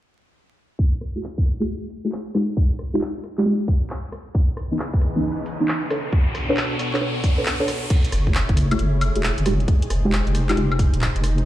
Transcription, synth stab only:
1.16 1.21 A3 medium
1.16 1.21 E4 medium
1.16 1.21 F#4 medium
1.16 1.21 G#4 medium
1.60 2.01 A3 medium
1.60 2.01 E4 medium
1.60 2.01 F#4 medium
1.60 2.01 G#4 medium
2.05 2.33 A3 medium
2.05 2.33 E4 medium
2.05 2.33 F#4 medium
2.05 2.33 G#4 medium
2.35 2.45 G#3 medium
2.35 2.45 D#4 medium
2.35 2.45 F4 medium
2.35 2.45 G4 loud
2.93 3.03 G#3 loud
2.93 3.03 D#4 medium
2.93 3.03 F4 medium
2.93 3.03 G4 loud
3.38 3.44 G#3 medium
3.38 3.44 D#4 medium
3.38 3.44 F4 medium
3.38 3.44 G4 loud
3.46 3.56 G#3 medium
3.46 3.56 D#4 medium
3.46 3.56 F4 medium
3.46 3.56 G4 medium
4.71 4.77 E3 medium
4.71 4.77 B3 medium
4.71 4.77 C#4 medium
4.71 4.77 D#4 medium
5.16 5.57 E3 medium
5.16 5.57 B3 medium
5.16 5.57 C#4 medium
5.16 5.57 D#4 medium
5.60 5.89 E3 medium
5.60 5.89 B3 medium
5.60 5.89 C#4 medium
5.60 5.88 D#4 medium
5.90 6.00 D4 medium
5.90 6.00 A4 medium
5.90 6.00 B4 medium
5.90 6.00 C#5 loud
6.49 6.59 D4 loud
6.49 6.59 A4 medium
6.49 6.59 B4 medium
6.49 6.59 C#5 loud
6.93 6.99 D4 loud
6.93 6.99 A4 medium
6.93 6.99 B4 medium
6.93 6.99 C#5 loud
7.01 7.11 D4 medium
7.01 7.11 A4 medium
7.01 7.11 B4 medium
7.01 7.11 C#5 medium
7.38 7.57 D4 medium
7.38 7.57 A4 medium
7.38 7.57 B4 medium
7.38 7.57 C#5 loud
7.60 7.70 D4 medium
7.60 7.70 A4 medium
7.60 7.70 B4 medium
7.60 7.70 C#5 loud
8.27 8.32 A3 medium
8.27 8.32 E4 medium
8.27 8.32 F#4 medium
8.27 8.32 G#4 medium
8.71 9.12 A3 medium
8.71 9.12 E4 medium
8.71 9.12 F#4 medium
8.71 9.12 G#4 medium
9.16 9.44 A3 medium
9.16 9.44 E4 medium
9.16 9.44 F#4 medium
9.16 9.44 G#4 medium
9.46 9.56 G#3 medium
9.46 9.56 D#4 medium
9.46 9.56 F4 medium
9.46 9.56 G4 loud
10.05 10.14 G#3 loud
10.05 10.14 D#4 medium
10.05 10.14 F4 medium
10.05 10.14 G4 loud
10.49 10.55 G#3 medium
10.49 10.55 D#4 medium
10.49 10.55 F4 medium
10.49 10.55 G4 loud
10.57 10.67 G#3 medium
10.57 10.67 D#4 medium
10.57 10.67 F4 medium
10.57 10.67 G4 medium

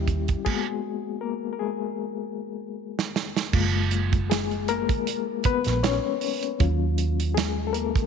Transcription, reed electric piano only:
0.00 0.42 G3 medium
0.00 0.43 C#4 soft
0.00 0.43 E4 medium
0.00 0.42 G4 medium
0.45 1.19 G#3 medium
0.45 0.98 A#3 soft
0.45 0.98 B3 soft
0.45 0.99 F#4 medium
0.45 1.25 G#4 medium
1.21 1.53 A#3 medium
1.21 1.52 A#4 medium
1.53 1.60 A#4 medium
1.59 3.11 G#3 medium
1.59 3.10 G#4 medium
3.53 4.30 G#3 medium
3.53 4.65 A#3 soft
3.53 4.65 F4 medium
4.30 4.66 G#3 medium
4.30 4.69 G#4 medium
4.69 5.42 A#3 medium
4.69 5.48 A#4 medium
5.46 5.82 B3 medium
5.46 5.85 B4 loud
5.83 6.39 C#4 medium
5.83 6.38 C#5 medium
6.60 8.06 F#3 medium
6.60 8.06 C#4 medium
6.60 8.06 F4 medium
7.34 7.66 G#3 medium
7.34 7.68 G#4 medium
7.67 7.74 A4 medium
7.73 8.06 A#3 medium
7.73 8.06 A#4 medium

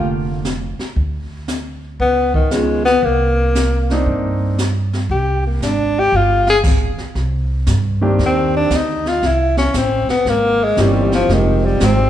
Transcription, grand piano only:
0.00 0.42 D3 medium
0.00 0.42 A3 medium
0.00 0.42 A#3 medium
0.00 0.42 F4 medium
2.52 2.83 D#3 medium
2.52 2.84 B3 soft
2.52 2.84 C#4 soft
2.52 2.84 F4 medium
3.91 4.56 A#3 medium
3.91 4.56 C4 medium
3.91 4.56 D4 medium
3.91 4.56 D#4 medium
8.01 8.67 D#3 medium
8.01 8.67 A#3 medium
8.01 8.68 C4 medium
8.01 8.68 D4 medium
8.01 8.68 G4 medium
10.78 11.29 E3 medium
10.78 11.30 A#3 medium
10.78 11.30 C4 medium
10.78 11.30 C#4 medium
10.78 11.30 G4 medium
11.31 12.09 F3 medium
11.31 12.10 G#3 soft
11.31 12.10 C4 soft
11.31 12.10 D#4 medium
11.31 12.10 G4 medium

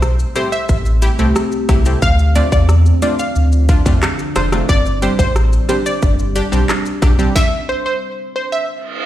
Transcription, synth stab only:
0.36 0.49 A3 medium
0.36 0.49 C4 medium
0.36 0.49 E4 medium
0.36 0.49 G4 medium
1.02 1.09 E4 medium
1.02 1.09 G4 loud
1.19 1.32 A3 medium
1.19 1.32 C4 medium
1.19 1.32 E4 medium
1.19 1.32 G4 medium
1.69 1.76 E4 medium
1.69 1.76 G4 loud
1.86 1.99 A3 medium
1.86 1.99 C4 medium
1.86 1.99 E4 medium
1.86 1.99 G4 medium
2.36 2.49 A3 medium
2.36 2.49 C4 medium
2.36 2.49 D4 medium
2.36 2.49 F4 medium
3.02 3.16 A3 medium
3.02 3.16 C4 medium
3.02 3.16 D4 medium
3.02 3.16 F4 medium
3.69 3.76 D4 medium
3.69 3.76 F4 loud
3.86 3.99 A3 medium
3.86 3.99 C4 medium
3.86 3.99 D4 medium
3.86 3.99 F4 medium
4.36 4.42 D4 medium
4.36 4.42 F4 medium
4.52 4.66 A3 medium
4.52 4.66 C4 medium
4.52 4.66 D4 medium
4.52 4.66 F4 medium
5.02 5.16 G3 medium
5.02 5.16 C4 medium
5.02 5.16 D4 medium
5.02 5.16 G4 medium
5.69 5.82 G3 medium
5.69 5.82 C4 medium
5.69 5.82 D4 medium
5.69 5.82 G4 medium
6.36 6.42 D4 medium
6.36 6.42 G4 loud
6.52 6.66 G3 medium
6.52 6.65 C4 medium
6.52 6.65 D4 medium
6.52 6.65 G4 medium
7.02 7.09 D4 medium
7.02 7.09 G4 loud
7.19 7.32 G3 medium
7.19 7.32 C4 medium
7.19 7.32 D4 medium
7.19 7.32 G4 medium

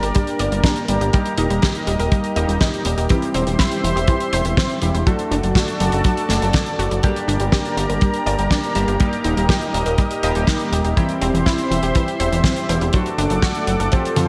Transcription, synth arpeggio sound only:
0.03 0.12 A#4 medium
0.15 0.21 G3 medium
0.40 0.49 D5 loud
0.52 0.62 G3 medium
0.64 0.74 D4 medium
0.89 1.00 G3 medium
1.01 1.11 G4 medium
1.13 1.19 G3 medium
1.38 1.48 D#4 loud
1.50 1.60 G3 medium
1.62 1.72 G4 loud
1.87 1.99 G3 medium
1.99 2.09 A#4 medium
2.12 2.17 G3 medium
2.36 2.46 D#5 loud
2.48 2.58 G3 medium
2.61 2.71 D#4 loud
2.85 2.97 G3 medium
2.98 3.07 G4 medium
3.10 3.16 E3 medium
3.34 3.44 C4 loud
3.47 3.57 E3 medium
3.59 3.69 E4 loud
3.84 3.95 E3 medium
3.96 4.06 G4 medium
4.08 4.14 E3 medium
4.33 4.43 C5 loud
4.45 4.55 E3 medium
4.58 4.67 C4 loud
4.82 4.94 E3 medium
4.94 5.04 E4 medium
5.07 5.13 F#3 medium
5.31 5.41 D4 loud
5.44 5.53 F#3 medium
5.56 5.66 F#4 loud
5.80 5.92 F#3 medium
5.93 6.03 A4 medium
6.05 6.11 F#3 medium
6.30 6.41 A3 medium
6.42 6.48 F#3 medium
6.54 6.60 D4 medium
6.79 6.85 F#4 loud
6.91 7.01 F#3 medium
7.03 7.09 G3 medium
7.28 7.38 D4 loud
7.40 7.50 G3 medium
7.53 7.62 G4 loud
7.77 7.89 G3 medium
7.89 7.99 A#4 medium
8.02 8.08 G3 medium
8.26 8.36 D5 loud
8.39 8.48 G3 medium
8.51 8.61 D4 medium
8.75 8.87 G3 medium
8.88 8.98 G4 medium
9.00 9.06 G3 medium
9.25 9.34 D#4 loud
9.37 9.47 G3 medium
9.49 9.59 G4 loud
9.74 9.86 G3 medium
9.86 9.96 A#4 medium
9.98 10.04 G3 medium
10.23 10.33 D#5 loud
10.35 10.45 G3 medium
10.48 10.57 D#4 loud
10.72 10.84 G3 medium
10.85 10.94 G4 medium
10.97 11.03 E3 medium
11.21 11.31 C4 loud
11.34 11.43 E3 medium
11.46 11.56 E4 loud
11.71 11.82 E3 medium
11.83 11.93 G4 medium
11.95 12.01 E3 medium
12.20 12.30 C5 loud
12.32 12.42 E3 medium
12.44 12.54 C4 loud
12.69 12.81 E3 medium
12.81 12.91 E4 medium
12.94 13.00 F#3 medium
13.18 13.28 D4 loud
13.31 13.40 F#3 medium
13.43 13.53 F#4 loud
13.67 13.79 F#3 medium
13.80 13.89 A4 medium
13.92 13.98 F3 medium
14.17 14.28 F3 medium

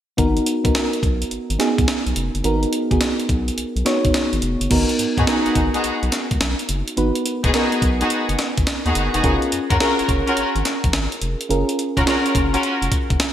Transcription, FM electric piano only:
0.17 0.58 B3 medium
0.17 0.58 D#4 medium
0.17 0.58 F#4 medium
0.17 0.58 A#4 medium
0.64 1.51 B3 medium
0.64 1.51 D#4 medium
0.64 1.51 F#4 medium
0.64 1.52 A#4 medium
1.59 2.37 B3 medium
1.59 2.37 D#4 medium
1.59 2.37 F#4 medium
1.59 2.38 G#4 medium
2.44 2.84 B3 medium
2.44 2.85 D#4 medium
2.44 2.85 F#4 medium
2.44 2.85 A#4 medium
2.91 3.77 B3 medium
2.91 3.78 D#4 medium
2.91 3.78 F#4 medium
2.91 3.78 G#4 medium
3.85 4.63 B3 medium
3.85 4.64 D#4 medium
3.85 4.64 F#4 medium
3.85 4.64 C#5 medium
4.70 5.22 B3 medium
4.70 5.23 D#4 medium
4.70 5.23 F#4 medium
4.70 5.23 A#4 medium
5.27 6.31 B3 medium
5.27 6.31 D#4 medium
5.27 6.31 F#4 medium
5.27 6.32 A#4 medium
6.97 7.49 B3 medium
6.97 7.49 D#4 medium
6.97 7.49 F#4 medium
6.97 7.49 B4 medium
7.53 8.57 B3 medium
7.53 8.57 D#4 medium
7.53 8.58 F#4 medium
7.53 8.58 A#4 medium
9.23 9.75 C#4 medium
9.23 9.76 F4 medium
9.23 9.76 G#4 medium
9.23 9.76 A#4 medium
9.80 10.84 C#4 medium
9.80 10.84 F4 medium
9.80 10.84 G#4 medium
9.80 10.85 A#4 medium
11.49 12.02 C#4 medium
11.49 12.02 F4 medium
11.49 12.02 G#4 medium
11.49 12.02 A#4 medium
12.06 13.10 C#4 medium
12.06 13.10 F4 medium
12.06 13.11 G#4 medium
12.06 13.11 A#4 medium

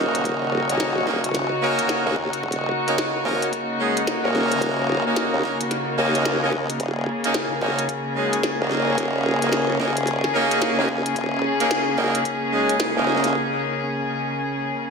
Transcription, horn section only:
0.00 0.66 A#3 medium
0.00 0.66 C#4 medium
0.00 0.66 D#4 medium
0.00 0.66 F#4 medium
0.00 0.66 A#4 medium
0.70 1.05 A#3 medium
0.70 1.05 C#4 medium
0.70 1.05 D#4 medium
0.70 1.05 F#4 medium
0.70 1.05 A#4 medium
1.07 1.23 A#3 medium
1.07 1.23 C#4 medium
1.07 1.23 D#4 medium
1.07 1.23 F#4 medium
1.07 1.23 A#4 loud
1.62 2.02 A#3 loud
1.62 2.02 C#4 loud
1.62 2.02 D#4 medium
1.62 2.02 F#4 medium
1.62 2.02 A#4 loud
2.06 2.15 A#3 medium
2.06 2.15 C#4 medium
2.06 2.15 D#4 medium
2.06 2.15 F#4 medium
2.06 2.15 A#4 medium
2.88 2.97 A#3 medium
2.88 2.97 C#4 medium
2.88 2.97 D#4 medium
2.88 2.97 F#4 medium
2.88 2.97 A#4 medium
3.25 3.47 A#3 loud
3.25 3.47 C#4 loud
3.25 3.47 D#4 medium
3.25 3.47 F#4 medium
3.25 3.47 A#4 loud
3.80 4.02 G#3 medium
3.80 4.02 C#4 medium
3.80 4.02 D#4 medium
3.80 4.02 F#4 medium
3.80 4.02 G#4 medium
4.24 5.02 A#3 medium
4.24 5.02 C#4 medium
4.24 5.02 D#4 medium
4.24 5.02 F#4 medium
4.24 5.02 A#4 medium
5.06 5.41 A#3 medium
5.06 5.41 C#4 medium
5.06 5.41 D#4 medium
5.06 5.41 F#4 medium
5.06 5.41 A#4 medium
5.44 5.59 A#3 medium
5.44 5.59 C#4 medium
5.44 5.59 D#4 medium
5.44 5.59 F#4 medium
5.44 5.59 A#4 loud
5.98 6.38 A#3 loud
5.98 6.38 C#4 medium
5.98 6.38 D#4 medium
5.98 6.38 F#4 medium
5.98 6.38 A#4 loud
6.42 6.52 A#3 medium
6.42 6.52 C#4 medium
6.42 6.52 D#4 medium
6.42 6.52 F#4 medium
6.42 6.52 A#4 loud
7.24 7.34 A#3 medium
7.24 7.34 C#4 medium
7.24 7.34 D#4 medium
7.24 7.34 F#4 medium
7.24 7.34 A#4 loud
7.62 7.83 A#3 loud
7.62 7.83 C#4 medium
7.62 7.83 D#4 medium
7.62 7.83 F#4 medium
7.62 7.83 A#4 loud
8.16 8.38 G#3 medium
8.16 8.38 C#4 medium
8.16 8.38 D#4 medium
8.16 8.38 F#4 medium
8.16 8.38 G#4 medium
8.60 9.38 A#3 medium
8.60 9.38 C#4 medium
8.60 9.38 D#4 medium
8.60 9.38 F#4 medium
8.60 9.38 A#4 medium
9.42 9.77 A#3 medium
9.42 9.77 C#4 medium
9.42 9.77 D#4 medium
9.42 9.77 F#4 medium
9.42 9.77 A#4 medium
9.80 9.95 A#3 medium
9.80 9.95 C#4 medium
9.80 9.95 D#4 medium
9.80 9.95 F#4 medium
9.80 9.95 A#4 loud
10.34 10.75 A#3 loud
10.34 10.75 C#4 loud
10.34 10.75 D#4 medium
10.34 10.75 F#4 medium
10.34 10.75 A#4 loud
10.79 10.88 A#3 medium
10.79 10.88 C#4 medium
10.79 10.88 D#4 medium
10.79 10.88 F#4 medium
10.79 10.88 A#4 loud
11.60 11.70 A#3 medium
11.60 11.70 C#4 medium
11.60 11.70 D#4 medium
11.60 11.70 F#4 medium
11.60 11.70 A#4 loud
11.98 12.20 A#3 loud
11.98 12.20 C#4 loud
11.98 12.20 D#4 medium
11.98 12.20 F#4 medium
11.98 12.20 A#4 loud
12.53 12.74 G#3 medium
12.53 12.74 C#4 medium
12.53 12.74 D#4 medium
12.53 12.74 F#4 medium
12.53 12.74 G#4 medium
12.97 13.34 A#3 medium
12.97 13.34 C#4 medium
12.97 13.34 D#4 medium
12.97 13.34 F#4 medium
12.97 13.34 A#4 medium

